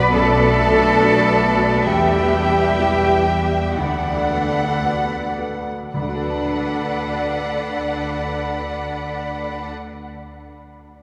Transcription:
Already playing: B1 B2 B3 D4 F#4 B4 D5 B5
0.12 F#2 F#3 A3 A4 A5
0.55 D4 F#4 B4
0.99 D4 F#4 B4
1.42 F#4 B4
1.86 E2 E3 G3 G4 E5 G5 B5
2.32 E4 G4 B4
2.78 E4 G4 B4
3.27 G4 B4
3.78 D2 D3 D4 A4 D5 F#5 B5
4.31 F#4 A4 B4
4.84 F#4 A4 B4
5.39 A4 B4
5.94 D2 D3 D4 A4 B4 D5 F#5 B5
6.02 D3 D4
6.08 F#4
6.15 A4
6.22 B4
6.30 A5

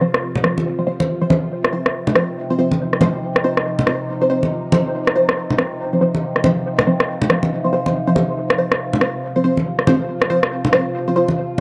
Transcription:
Already playing: C3 F3 F4
0.01 F3 C4 C5
0.14 cross-stick
0.35 low conga
0.44 F3 C4 C5, cross-stick
0.58 high conga
0.79 F3 C4 C5
0.87 F3 C4 C5
1.00 F3 C4 C5, high conga
1.21 F3 C4 C5
1.30 F3 C4 C5, high conga
1.51 D#4
1.64 cross-stick
1.73 F3 C4 C5
1.86 cross-stick
2.07 low conga
2.15 F3 C4 C5, cross-stick
2.50 F3 C4 C5
2.59 F3 C4 C5
2.72 high conga
2.93 cross-stick
3.01 F3 C4 C5, high conga, low conga
3.36 cross-stick
3.44 F3 C4 C5
3.57 cross-stick
3.79 low conga
3.87 F3 C4 C5, cross-stick
4.22 F3 C4 C5
4.30 F3 C4 C5
4.43 high conga
4.72 F3 C4 C5, high conga
5.07 cross-stick
5.15 F3 C4 C5
5.29 cross-stick
5.50 low conga
5.58 F3 C4 C5, cross-stick
5.93 F3 C4 C5
6.01 F3 C4 C5
6.15 high conga
6.36 cross-stick
6.44 F3 C4 C5, high conga, low conga
6.79 cross-stick, low conga
6.87 F3 C4 C5
7.00 cross-stick
7.22 low conga
7.30 F3 C4 C5, cross-stick
7.43 high conga
7.64 F3 C4 C5
7.73 F3 C4 C5
7.86 F3 C4 C5, high conga
8.07 F3 C4 C5
8.15 F3 C4 C5, high conga
8.37 F4
8.50 cross-stick
8.58 F3 C4 C5
8.72 cross-stick
8.93 low conga
9.01 F3 C4 C5, cross-stick
9.36 F3 C4 C5
9.44 F3 C4 C5
9.57 high conga
9.79 cross-stick
9.87 F3 C4 C5, high conga, low conga
10.22 cross-stick
10.30 F3 C4 C5
10.43 cross-stick
10.65 low conga
10.73 F3 C4 C5, cross-stick
11.08 F3 C4 C5
11.16 F3 C4 C5
11.28 high conga

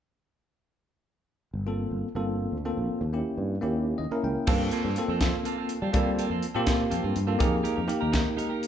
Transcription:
1.54 G1
1.67 A#3 C4 F4 A4
1.91 G1
2.15 G1 A#3 C4 F4 A4
2.52 D2
2.65 A#3 C4 F4 A4
2.77 A#1
2.90 muted fretless electric bass stroke
3.01 D#2
3.13 A#3 C#4 E4 G4
3.38 G2
3.61 D#2 A#3 C#4 E4 G4
3.98 D#2 D#5
4.11 A#3 C#4 E4 A#4, muted fretless electric bass stroke
4.23 C#2 G5
4.37 muted fretless electric bass stroke
4.47 G2 A#3 C4 F4 A4, kick, crash
4.71 A#3 C4 F4 A4, closed hi-hat
4.84 G2 C4 F4 A4
4.96 A#3 C4 F4 A4, closed hi-hat
5.08 F2 C4 F4 A4
5.21 A#3 C4 F4 A4, kick, snare, closed hi-hat
5.45 A#3 C4 F4 A4, closed hi-hat
5.57 C4 F4 A4
5.69 closed hi-hat
5.82 G3 C4 F4 A4
5.93 G3 A#3 C4 F4 A4, kick, closed hi-hat
6.19 A#3 C4 F4 A4, closed hi-hat
6.30 F2 C4 F4 A4
6.43 closed hi-hat
6.55 A#2 A#3 C4 F4 G4 A4
6.66 A#3 C4 F4 A4, kick, snare, closed hi-hat
6.90 F2 A#3 C4 F4 A4, closed hi-hat
7.03 G2 C4 F4 A4
7.16 G2, closed hi-hat
7.27 A#3 C4 F4 A4
7.39 F2 G#3 A#3 D#4 G4 G#4 A#4, kick, closed hi-hat
7.63 G#3 D#4 G4 A#4, closed hi-hat
7.76 F2 D#4 G4 A#4
7.88 A#3 D#4 G4 A#4, closed hi-hat
8.01 D#2 D#4 G4 A#4
8.12 G#3 D#4 G4 A#4, kick, snare, closed hi-hat
8.36 G#3 D#4 G4 A#4, closed hi-hat
8.49 D#4 G4 A#4
8.63 closed hi-hat

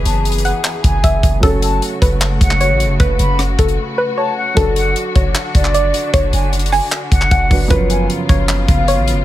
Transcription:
Already playing: F#2 E3 B3 G#4 B4
0.05 F#1 A5, closed hi-hat
0.25 closed hi-hat
0.32 closed hi-hat
0.38 closed hi-hat
0.45 F#5, closed hi-hat
0.64 clap, closed hi-hat
0.84 F#1 G#5, kick, closed hi-hat
1.04 F#1 E5, kick, closed hi-hat
1.23 F#1, kick, closed hi-hat
1.40 F#1 C#3 F#3 A3 C#4 F#4 A4, kick, closed hi-hat
1.45 A4
1.62 A5, closed hi-hat
1.82 closed hi-hat
2.02 F#1 B4, kick, closed hi-hat
2.21 clap, closed hi-hat
2.41 F#1 F#5, kick, closed hi-hat
2.51 clap
2.61 C#5, closed hi-hat
2.70 A1
2.80 closed hi-hat
2.85 F#1
3.00 F#1 B4, kick, closed hi-hat
3.19 F#1 B5, closed hi-hat
3.39 cross-stick, closed hi-hat
3.59 F#1 A4, kick, closed hi-hat
3.68 closed hi-hat
3.98 B4
4.17 C#5 A5
4.37 F#5
4.54 F#1 D3 F#3 D4 A4, kick, closed hi-hat
4.59 A4
4.76 F#5, closed hi-hat
4.96 closed hi-hat
5.15 F#1 C#5, kick, closed hi-hat
5.35 clap, closed hi-hat
5.55 F#1 D5, kick, closed hi-hat
5.65 clap
5.74 D5, closed hi-hat
5.94 closed hi-hat
6.14 F#1 C#5, kick, closed hi-hat
6.33 F#1 G#5, closed hi-hat
6.53 closed hi-hat
6.59 closed hi-hat
6.66 closed hi-hat
6.72 G#5, cross-stick, open hi-hat
6.92 clap, closed hi-hat
7.12 F#1 F#5, kick, closed hi-hat
7.22 clap
7.31 F#1 F#5, kick, closed hi-hat
7.50 F#1 F#3 D4 B4, kick, open hi-hat
7.68 F#1 F#2 C#3 F3 B3 C#4 F4 B4, kick, closed hi-hat
7.73 B4
7.90 G#5, closed hi-hat
8.10 closed hi-hat
8.29 F#1 C#5, kick, closed hi-hat
8.49 clap, closed hi-hat
8.68 F#1 F5, kick, closed hi-hat
8.88 C#5, closed hi-hat
8.98 A1
9.08 closed hi-hat
9.13 F#1

